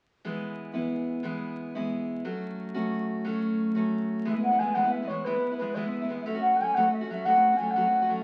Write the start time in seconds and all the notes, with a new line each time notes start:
0.25 E3 G#3 B3 E4
0.73 E3 G#3 B3 E4
1.23 E3 G#3 B3 E4
1.75 E3 G#3 B3 E4
2.25 F#3 A3 C#4 F#4
2.74 F#3 A3 C#4 F#4
3.25 F#3 A3 C#4 F#4
3.75 F#3 A3 C#4 F#4
4.25 E3 G#3 B3 E4 E5
4.33 G#3 B3 E4
4.43 F#5
4.51 G#3 B3 E4
4.59 E3 G#3 B3 E4 G#5
4.74 E3 G#3 B3 E4 F#5
4.84 G#3 B3 E4
4.92 E5
5.02 G#3 B3 E4
5.07 E3 G#3 B3 C#5
5.12 E4
5.24 E3 G#3 B3 E4 B4
5.34 G#3 B3 E4
5.52 G#3 B3 E4
5.57 E3 G#3 B4
5.61 B3 E4
5.75 E3 G#3 B3 E4 E5
5.85 G#3 B3 E4
6.02 G#3 B3 E4
6.09 E3 G#3 B3 E4
6.22 F#3 E5
6.26 A3 C#4 F#4
6.34 A3 C#4 F#4
6.41 F#5
6.53 A3 C#4 F#4
6.57 F#3 G#5
6.61 A3 C#4 F#4
6.75 F#3 A3 C#4 F#4 F#5
6.85 A3 C#4 F#4
6.93 E5
7.01 A3 C#4 F#4
7.09 F#3 A3 C#4 F#4 E5
7.25 F#3 A3 C#4 F#4 F#5
7.35 A3 C#4 F#4
7.53 A3 C#4 F#4
7.57 F#3 A3 G#5
7.62 C#4 F#4
7.71 F#5
7.76 F#3 A3 C#4 F#4
7.85 A3 C#4 F#4
8.02 A3 C#4 F#4
8.09 F#3 A3 C#4 F#4